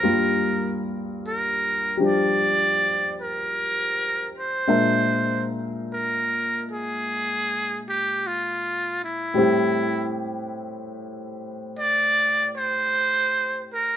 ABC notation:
X:1
M:4/4
L:1/8
Q:"Swing" 1/4=52
K:Bblyd
V:1 name="Muted trumpet"
B z B d2 B2 c- | c z B _A2 G F E- | E z3 d c2 B |]
V:2 name="Grand piano"
[G,,G,B,F]3 [F,G,DG]4- [F,G,DG] | [B,,_A,DBe]8 | [A,,G,CEG]8 |]